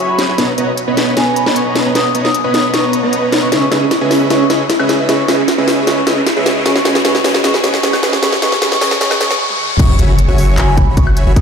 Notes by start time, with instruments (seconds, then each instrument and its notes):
Already playing: 808-style bass F#1, supersaw synth F#4 C#5 E5 G#5 B5, riser
0.09 vibraphone B5
0.19 snare, closed hi-hat
0.28 808-style bass F#2, supersaw synth F#4 C#5 E5 G#5 B5
0.38 808-style bass B1, supersaw synth B3 B4 C#5 D#5 A#5, snare, closed hi-hat
0.58 808-style bass B1, supersaw synth B3 B4 C#5 D#5 A#5, closed hi-hat
0.77 closed hi-hat
0.87 808-style bass B1, supersaw synth B3 B4 C#5 D#5 B5
0.97 snare, closed hi-hat
1.17 808-style bass B1, supersaw synth B3 B4 C#5 D#5 A#5, vibraphone G#5, snare, closed hi-hat
1.27 vibraphone G#5
1.36 vibraphone B5, closed hi-hat
1.46 808-style bass B1, supersaw synth B3 B4 C#5 D#5 A#5, snare
1.56 vibraphone C#6, closed hi-hat
1.76 snare, closed hi-hat
1.85 808-style bass B1, supersaw synth B3 B4 C#5 D#5 A#5
1.95 808-style bass B1, supersaw synth B3 B4 C#5 D#5 A#5, vibraphone D#6, snare, closed hi-hat
2.15 808-style bass B1, supersaw synth B3 B4 C#5 D#5 A#5, closed hi-hat
2.25 vibraphone D#6, snare
2.34 vibraphone D#6, closed hi-hat
2.44 808-style bass B1, supersaw synth B3 B4 C#5 D#5 B5
2.54 vibraphone D#6, snare, closed hi-hat
2.64 vibraphone D#6
2.73 808-style bass B1, supersaw synth B3 B4 C#5 D#5 A#5, vibraphone C#6, snare, closed hi-hat
2.84 vibraphone C#6
2.93 closed hi-hat
3.03 808-style bass B1, supersaw synth B3 B4 C#5 D#5 A#5
3.13 closed hi-hat
3.32 snare, closed hi-hat
3.42 808-style bass B1, supersaw synth B3 B4 C#5 D#5 A#5, vibraphone C#6
3.52 808-style bass C#2, supersaw synth C#4 G#4 B4 D#5 E5, vibraphone C#6, snare, closed hi-hat
3.71 808-style bass C#2, supersaw synth C#4 G#4 B4 D#5 E5, snare, closed hi-hat
3.91 snare, closed hi-hat
4.01 808-style bass C#2, supersaw synth C#4 G#4 B4 D#5 E5
4.11 snare, open hi-hat
4.30 808-style bass C#2, supersaw synth C#4 G#4 B4 D#5 E5, vibraphone C#6, snare, closed hi-hat
4.50 808-style bass C#2, supersaw synth C#4 G#4 B4 D#5 E5, snare, closed hi-hat
4.70 snare, closed hi-hat
4.80 808-style bass C#2, supersaw synth C#4 G#4 B4 D#5 E5, high woodblock
4.89 snare, closed hi-hat
5.09 808-style bass C#2, supersaw synth C#4 G#4 B4 D#5 E5, vibraphone C#6, snare, closed hi-hat
5.28 supersaw synth C#4 G#4 B4 D#5 E5, snare, closed hi-hat
5.48 snare, closed hi-hat
5.58 808-style bass C#2, supersaw synth C#4 G#4 B4 D#5 E5
5.68 snare, open hi-hat
5.87 808-style bass C#2, supersaw synth C#4 G#4 B4 D#5 E5, vibraphone C#6, snare, closed hi-hat
6.07 supersaw synth C#4 G#4 B4 D#5 E5, snare, closed hi-hat
6.26 snare, closed hi-hat
6.36 808-style bass C#2, supersaw synth C#4 G#4 B4 D#5 E5
6.46 snare, closed hi-hat
6.66 supersaw synth C#4 G#4 B4 D#5, vibraphone C#6, snare, closed hi-hat
6.76 snare
6.85 supersaw synth C#4 G#4 B4 D#5, snare, closed hi-hat
6.95 snare
7.05 808-style bass G#1, supersaw synth C#4 G#4 B4 D#5, vibraphone C#6, snare, closed hi-hat
7.15 snare
7.24 808-style bass G#1, supersaw synth C#4 G#4 B4 D#5, snare, open hi-hat
7.34 snare
7.44 supersaw synth C#4 G#4 B4 D#5, vibraphone C#6, snare, closed hi-hat
7.54 snare
7.64 supersaw synth C#4 G#4 B4 D#5, snare, closed hi-hat
7.74 snare
7.83 supersaw synth C#4 G#4 B4 D#5, vibraphone C#6, snare, closed hi-hat
7.93 snare, high woodblock
8.03 supersaw synth C#4 G#4 B4 D#5, snare, closed hi-hat
8.13 snare
8.22 supersaw synth C#4 G#4 B4 D#5, vibraphone C#6, snare, closed hi-hat
8.32 snare
8.42 supersaw synth C#4 G#4 B4 D#5, vibraphone C#6, snare, closed hi-hat
8.52 snare
8.62 supersaw synth C#4 G#4 B4 D#5, vibraphone C#6, snare, closed hi-hat
8.72 snare
8.81 supersaw synth C#4 G#4 B4 D#5, vibraphone C#6, snare, open hi-hat
8.91 snare
9.01 supersaw synth C#4 G#4 B4 D#5, vibraphone C#6, snare, closed hi-hat
9.11 snare, high woodblock
9.20 supersaw synth C#4 G#4 B4 D#5, vibraphone C#6, snare, closed hi-hat
9.31 snare
9.50 high tom
9.60 mid tom
9.70 mid tom
9.79 808-style bass F#1, supersaw synth F#4 C#5 E5 G#5 B5, vibraphone C#6, kick, closed hi-hat, crash, impact
9.99 808-style bass F#1, supersaw synth F#4 C#5 E5 G#5 B5, closed hi-hat
10.19 closed hi-hat
10.28 808-style bass F#1, supersaw synth F#4 C#5 E5 G#5 C#6
10.38 open hi-hat
10.58 808-style bass F#1, supersaw synth F#4 C#5 E5 G#5 B5, vibraphone G#5, clap, closed hi-hat
10.68 vibraphone G#5
10.77 kick, closed hi-hat
10.87 808-style bass F#1, supersaw synth F#4 C#5 E5 G#5 B5
10.97 vibraphone C#6, kick, closed hi-hat
11.07 high woodblock
11.17 closed hi-hat
11.27 808-style bass F#1, supersaw synth F#4 C#5 E5 G#5 B5
11.36 supersaw synth F#4 C#5 E5 B5, vibraphone D#6, kick, closed hi-hat